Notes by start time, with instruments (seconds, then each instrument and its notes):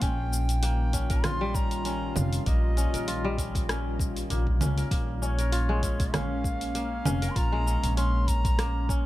Already playing: kora A#3 F4 A#4
0.01 upright bass A#1, ambient pad D#3 G3 F4, kora C#4, bansuri G5, kick, open hi-hat, cabasa
0.33 cabasa
0.49 open hi-hat, cabasa
0.63 kora A#3, open hi-hat, cabasa
0.93 kora C#4, kick, open hi-hat, cabasa
1.10 kora A#4, kick, open hi-hat, cabasa
1.24 kora F4, bansuri C6, cross-stick, open hi-hat, low conga, cabasa
1.41 kora G3
1.55 kora C#4, bansuri A#5, kick, cabasa
1.71 open hi-hat, cabasa
1.85 kora C#4, open hi-hat, cabasa
2.16 upright bass F1, bansuri F5, low conga, cabasa
2.33 open hi-hat, cabasa
2.46 upright bass A#1, kora A#3, bansuri D#5, kick, open hi-hat, cabasa
2.77 kora C#4, open hi-hat, cabasa
2.94 upright bass A#1, kora A#4, open hi-hat, cabasa
3.08 kora F4, open hi-hat, cabasa
3.24 kora G3
3.38 kora C#4, kick, open hi-hat, cabasa
3.55 kick, open hi-hat, cabasa
3.69 kora C#4, cross-stick, open hi-hat, cabasa
3.99 kick, cabasa
4.16 open hi-hat, cabasa
4.30 upright bass A#1, kora A#3, open hi-hat, cabasa
4.47 kick
4.61 upright bass C#2, kora C#4, open hi-hat, low conga, cabasa
4.77 kora A#4, open hi-hat, cabasa
4.91 upright bass A#1, kora A#3, ambient pad A#3 C#4, kick, open hi-hat, cabasa
5.22 kora C#4, bansuri D#5, cabasa
5.26 bansuri C#5
5.39 kora A#4, open hi-hat, cabasa
5.52 kora F4, open hi-hat, cabasa
5.69 kora G#3
5.83 kora C#4, kick, open hi-hat, cabasa
6.00 kick, open hi-hat, cabasa
6.14 kora C#4, bansuri F5, cross-stick, open hi-hat, low conga, cabasa
6.44 kick, cabasa
6.61 open hi-hat, cabasa
6.75 kora A#3, open hi-hat, cabasa
7.05 upright bass F1, kora C#4, low conga, cabasa
7.22 kora A#4, open hi-hat, cabasa
7.30 bansuri C6
7.36 upright bass A#1, kora F4, bansuri A#5, kick, open hi-hat, cabasa
7.52 kora G#3
7.66 kora C#4, cabasa
7.83 upright bass A#1, open hi-hat, cabasa
7.97 kora C#4, bansuri C6, open hi-hat, cabasa
8.28 bansuri A#5, kick, open hi-hat, cabasa
8.45 kick, open hi-hat, cabasa
8.58 kora A#3, cross-stick, open hi-hat, cabasa
8.89 kora C#4, kick, cabasa